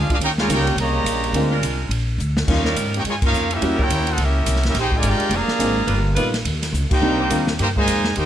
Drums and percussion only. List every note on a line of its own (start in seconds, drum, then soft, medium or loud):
0.10 kick medium
0.10 ride medium
0.21 ride medium
0.38 snare medium
0.50 hi-hat pedal medium
0.50 ride medium
0.67 ride medium
0.78 ride medium
1.06 hi-hat pedal medium
1.06 ride medium
1.24 ride medium
1.34 ride medium
1.63 hi-hat pedal medium
1.63 ride medium
1.91 ride medium
2.20 hi-hat pedal medium
2.37 snare medium
2.48 kick medium
2.48 crash medium
2.65 snare medium
2.76 hi-hat pedal medium
2.76 ride medium
2.94 ride medium
3.05 ride medium
3.22 kick medium
3.22 crash medium
3.34 hi-hat pedal medium
3.51 ride medium
3.62 ride medium
3.79 kick medium
3.90 hi-hat pedal medium
3.90 ride medium
4.07 ride medium
4.18 ride medium
4.46 hi-hat pedal medium
4.46 ride medium
4.56 snare soft
4.63 snare medium
4.63 ride medium
4.74 snare soft
4.74 ride medium
4.92 kick medium
5.03 hi-hat pedal medium
5.03 ride loud
5.20 ride medium
5.31 ride medium
5.48 snare medium
5.60 hi-hat pedal medium
5.60 ride medium
5.88 ride medium
6.16 hi-hat pedal medium
6.16 ride medium
6.34 snare medium
6.34 ride medium
6.45 ride medium
6.62 snare soft
6.62 ride medium
6.74 hi-hat pedal medium
6.91 kick loud
6.91 crash medium
7.30 hi-hat pedal medium
7.30 ride medium
7.47 snare medium
7.59 ride medium
7.76 kick medium
7.87 hi-hat pedal medium
7.87 ride medium
8.04 snare medium
8.16 ride medium